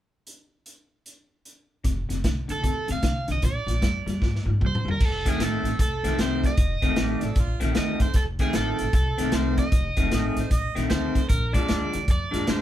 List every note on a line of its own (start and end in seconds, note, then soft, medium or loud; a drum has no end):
0.27 closed hi-hat medium
0.66 closed hi-hat soft
1.06 closed hi-hat soft
1.45 closed hi-hat soft
1.84 2.03 F1 medium
1.84 2.07 F2 medium
1.84 2.07 C3 medium
1.84 kick medium
1.84 snare soft
1.84 closed hi-hat medium
2.09 2.21 F1 medium
2.09 2.22 F2 medium
2.09 2.23 C3 medium
2.09 snare soft
2.09 closed hi-hat medium
2.24 2.43 C2 medium
2.24 2.47 F2 medium
2.24 2.47 D3 medium
2.24 kick medium
2.24 snare medium
2.24 closed hi-hat medium
2.48 2.60 C2 medium
2.48 2.61 F2 medium
2.48 2.62 D3 medium
2.48 2.87 A4 medium
2.48 snare soft
2.48 closed hi-hat medium
2.62 2.82 D#2 medium
2.62 2.86 F2 medium
2.62 2.86 C3 medium
2.62 kick medium
2.62 snare soft
2.62 closed hi-hat medium
2.88 3.00 D#2 medium
2.88 3.01 F2 medium
2.88 3.02 C3 medium
2.88 snare soft
2.88 closed hi-hat medium
2.92 3.27 F5 medium
3.02 3.22 C2 medium
3.02 3.25 F2 medium
3.02 3.25 D3 medium
3.02 kick medium
3.02 snare medium
3.02 closed hi-hat medium
3.28 3.39 C2 medium
3.28 3.41 F2 medium
3.28 3.41 D3 medium
3.28 snare soft
3.28 closed hi-hat medium
3.32 3.45 D#5 medium
3.42 3.61 A#1 medium
3.42 3.65 A#2 medium
3.42 3.65 F3 medium
3.42 4.83 D5 medium
3.42 kick medium
3.42 snare soft
3.42 closed hi-hat medium
3.67 3.77 A#1 medium
3.67 3.80 A#2 medium
3.67 3.81 F3 medium
3.67 snare soft
3.67 closed hi-hat medium
3.82 4.01 F2 medium
3.82 4.04 A#2 medium
3.82 4.04 G3 medium
3.82 kick medium
3.82 snare medium
3.82 closed hi-hat medium
4.06 4.17 F2 medium
4.06 4.20 A#2 medium
4.06 4.20 G3 medium
4.06 snare soft
4.06 closed hi-hat medium
4.22 4.40 G#2 medium
4.22 4.44 A#2 medium
4.22 4.44 F3 medium
4.22 kick medium
4.22 snare medium
4.36 snare soft
4.46 4.56 G#2 medium
4.46 4.59 A#2 medium
4.46 4.59 F3 medium
4.61 4.80 F2 medium
4.61 4.83 A#2 medium
4.61 4.84 G3 medium
4.61 kick medium
4.61 mid tom medium
4.66 4.89 C5 medium
4.75 mid tom medium
4.85 4.96 F2 medium
4.85 4.99 A#2 medium
4.85 4.99 G3 medium
4.85 floor tom medium
4.91 5.05 A#4 medium
5.01 5.25 F1 medium
5.01 kick loud
5.01 snare soft
5.01 crash medium
5.05 5.29 A4 medium
5.26 5.38 F2 medium
5.26 5.39 D#3 medium
5.26 5.39 A3 medium
5.26 5.40 C4 medium
5.26 5.43 G#4 medium
5.26 kick medium
5.26 snare soft
5.26 closed hi-hat medium
5.39 5.55 A1 medium
5.39 5.69 F2 medium
5.39 5.69 D#3 medium
5.39 5.69 A3 medium
5.39 5.70 C4 medium
5.39 5.80 A4 medium
5.39 snare medium
5.39 closed hi-hat medium
5.63 5.73 A1 medium
5.63 snare soft
5.63 closed hi-hat medium
5.79 5.95 C2 medium
5.79 6.20 A4 medium
5.79 kick loud
5.79 snare soft
5.79 closed hi-hat medium
6.03 6.13 C2 medium
6.03 6.18 F2 medium
6.03 6.19 D#3 medium
6.03 6.18 A3 medium
6.03 6.18 C4 medium
6.03 snare soft
6.03 closed hi-hat medium
6.18 6.43 C2 medium
6.18 6.48 F2 medium
6.18 6.48 D#3 medium
6.18 6.48 A3 medium
6.18 6.49 C4 medium
6.18 6.45 C5 medium
6.18 snare medium
6.18 closed hi-hat medium
6.44 7.21 D#5 medium
6.44 kick medium
6.44 snare soft
6.44 closed hi-hat medium
6.57 6.73 F1 medium
6.57 kick loud
6.57 snare soft
6.57 closed hi-hat medium
6.82 6.92 F1 medium
6.82 6.95 F2 medium
6.82 6.96 D#3 medium
6.82 6.96 A3 medium
6.82 6.96 C4 medium
6.82 kick medium
6.82 snare soft
6.82 closed hi-hat medium
6.96 7.13 A1 medium
6.96 7.26 F2 medium
6.96 7.26 D#3 medium
6.96 7.26 A3 medium
6.96 7.26 C4 medium
6.96 7.27 G4 medium
6.96 snare loud
6.96 closed hi-hat medium
7.21 7.31 A1 medium
7.21 7.59 D5 medium
7.21 snare soft
7.21 closed hi-hat medium
7.25 7.38 A4 medium
7.36 7.52 A#1 medium
7.36 7.62 F4 medium
7.36 kick medium
7.36 snare soft
7.36 closed hi-hat medium
7.60 7.70 A#1 medium
7.60 7.73 F2 medium
7.60 7.74 D#3 medium
7.60 7.74 A3 medium
7.60 7.75 C4 medium
7.60 snare soft
7.60 closed hi-hat medium
7.74 8.04 F2 medium
7.74 8.05 D#3 medium
7.74 8.05 A3 medium
7.74 8.05 C4 medium
7.74 snare loud
7.74 closed hi-hat medium
7.78 8.00 D#5 medium
8.00 8.09 D2 medium
8.00 8.16 C5 medium
8.00 kick medium
8.00 snare soft
8.00 closed hi-hat medium
8.14 8.39 F1 medium
8.14 8.22 A4 medium
8.14 kick loud
8.14 snare soft
8.14 closed hi-hat medium
8.39 8.53 F2 medium
8.39 8.53 D#3 medium
8.39 8.54 A3 medium
8.39 8.54 C4 medium
8.39 8.54 G#4 medium
8.39 kick medium
8.39 snare soft
8.39 closed hi-hat medium
8.53 8.70 A1 medium
8.53 8.83 F2 medium
8.53 8.84 D#3 medium
8.53 8.84 A3 medium
8.53 8.84 C4 medium
8.53 8.94 A4 medium
8.53 snare loud
8.53 closed hi-hat medium
8.79 8.89 A1 medium
8.79 snare soft
8.79 closed hi-hat medium
8.93 9.09 C2 medium
8.93 9.35 A4 medium
8.93 kick loud
8.93 snare soft
8.93 closed hi-hat medium
9.18 9.28 C2 medium
9.18 9.31 F2 medium
9.18 9.32 D#3 medium
9.18 9.32 A3 medium
9.18 9.32 C4 medium
9.18 snare soft
9.18 closed hi-hat medium
9.32 9.57 C2 medium
9.32 9.62 F2 medium
9.32 9.62 D#3 medium
9.32 9.62 A3 medium
9.32 9.63 C4 medium
9.32 9.59 C5 medium
9.32 snare loud
9.32 closed hi-hat medium
9.58 10.72 D#5 medium
9.58 kick medium
9.58 snare soft
9.58 closed hi-hat medium
9.72 9.88 F1 medium
9.72 kick loud
9.72 snare soft
9.72 closed hi-hat medium
9.97 10.06 F1 medium
9.97 10.10 F2 medium
9.97 10.11 D#3 medium
9.97 10.11 A3 medium
9.97 10.11 C4 medium
9.97 kick medium
9.97 snare soft
9.97 closed hi-hat medium
10.11 10.27 A1 medium
10.11 10.41 F2 medium
10.11 10.41 D#3 medium
10.11 10.41 A3 medium
10.11 10.41 C4 medium
10.11 10.26 D#5 medium
10.11 snare medium
10.11 closed hi-hat medium
10.27 10.39 G#4 medium
10.36 10.45 A1 medium
10.36 10.51 C5 medium
10.36 snare soft
10.36 closed hi-hat medium
10.51 10.67 A#1 medium
10.51 10.83 D#5 medium
10.51 kick medium
10.51 snare soft
10.51 closed hi-hat medium
10.75 10.85 A#1 medium
10.75 10.89 F2 medium
10.75 10.89 D#3 medium
10.75 10.90 A3 medium
10.75 10.90 C4 medium
10.75 snare soft
10.75 closed hi-hat medium
10.90 11.06 D2 medium
10.90 11.19 F2 medium
10.90 11.19 D#3 medium
10.90 11.20 A3 medium
10.90 11.20 C4 medium
10.90 11.29 C5 medium
10.90 snare medium
10.90 closed hi-hat medium
11.15 11.24 D2 medium
11.15 kick medium
11.15 snare soft
11.15 closed hi-hat medium
11.29 11.54 A#1 medium
11.29 11.55 A#4 medium
11.29 kick loud
11.29 snare soft
11.29 closed hi-hat medium
11.53 11.66 A#2 medium
11.53 11.67 F3 medium
11.53 11.68 G#3 medium
11.53 11.68 D4 medium
11.53 12.10 D5 medium
11.53 kick medium
11.53 snare soft
11.53 closed hi-hat medium
11.68 11.85 D2 medium
11.68 11.97 A#2 medium
11.68 11.98 F3 medium
11.68 11.98 G#3 medium
11.68 11.98 D4 medium
11.68 snare loud
11.68 closed hi-hat medium
11.93 12.03 D2 medium
11.93 snare soft
11.93 closed hi-hat medium
12.08 12.24 F2 medium
12.08 12.50 D5 medium
12.08 kick loud
12.08 snare soft
12.08 closed hi-hat medium
12.31 12.42 F2 medium
12.31 12.45 A#2 medium
12.31 12.45 F3 medium
12.31 12.46 G#3 medium
12.31 12.46 D4 medium
12.31 snare soft
12.31 closed hi-hat medium
12.46 12.62 F2 medium
12.46 12.62 A#2 medium
12.46 12.62 F3 medium
12.46 12.62 G#3 medium
12.46 12.62 D4 medium
12.46 snare loud
12.46 closed hi-hat medium
12.50 12.62 C5 medium